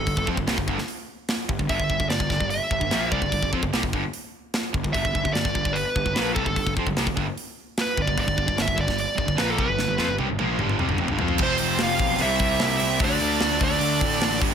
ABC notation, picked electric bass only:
X:1
M:4/4
L:1/16
Q:1/4=149
K:Ddor
V:1 name="Picked electric bass" clef=bass
G,,, G,,, F,, G,,, C,, G,,, G,,, z6 z G,,, G,,, | G,,, G,,, G,,, G,,, G,,, G,,, G,,, G,,,2 z G,,, G,,, _B,,,2 C,, G,,, | G,,, G,,, F,, G,,, C,, G,,, G,,, z6 z G,,, G,,, | G,,, G,,, G,,, G,,, G,,, G,,, G,,, G,,,2 z G,,, G,,, _B,,,2 C,, G,,, |
G,,, G,,, F,, G,,, C,, G,,, G,,, z6 z G,,, G,,, | G,,, G,,, G,,, G,,, G,,, G,,, G,,, G,,,2 z G,,, G,,, _B,,,2 C,, G,,, | G,,, G,,, F,, G,,, C,, G,,, _B,,,2 G,,,2 C,, G,,, F,,, G,,, F,,2 | F,,,2 F,,,2 F,,,2 B,,,2 C,,4 C,,2 C,,2 |
D,,2 D,,2 D,,2 D,,2 D,,2 A,,2 A,,,2 G,,,2 |]